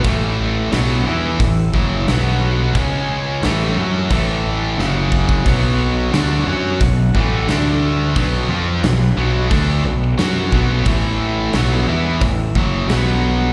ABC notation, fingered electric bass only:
X:1
M:4/4
L:1/8
Q:1/4=89
K:Alyd
V:1 name="Fingered electric bass" clef=bass
A,,,2 B,,, E,, A,,, F,,, B,,,2 | C,,2 A,,, F,, A,,,2 F,,,2 | B,,,2 =D,, F,, B,,, A,,, D,,2 | B,,, ^E,, B,,, B,,, =D,, B,,, F,, B,,, |
A,,,2 B,,, E,, A,,, F,,, B,,,2 |]